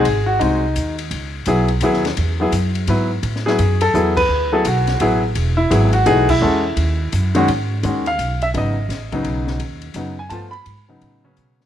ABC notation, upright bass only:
X:1
M:3/4
L:1/8
Q:"Swing" 1/4=170
K:G#phr
V:1 name="Upright bass" clef=bass
G,,,2 ^B,,,2 D,,2 | C,,2 B,,,2 D,,2 | E,,2 F,,2 G,,2 | A,,2 F,,2 E,,2 |
=D,,2 B,,,2 A,,,2 | E,,,2 G,,,2 B,,,2 | E,,2 D,,2 F,,2 | G,,2 D,,2 B,,,2 |
G,,,2 A,,,2 B,,,2 | D,,2 F,,2 =G,,2 | G,,2 A,,2 B,,2 |]